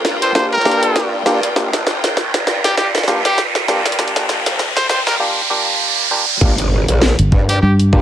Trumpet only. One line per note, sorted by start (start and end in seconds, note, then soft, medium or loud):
0.22 0.30 C5 medium
0.35 0.46 C5 medium
0.52 1.13 A#4 medium
2.64 2.73 G4 medium
2.78 2.89 G4 medium
3.25 3.43 G4 medium
4.76 4.85 C5 medium
4.89 5.01 C5 medium
5.07 5.15 A#4 medium
7.49 7.58 G4 medium
7.62 7.73 G4 medium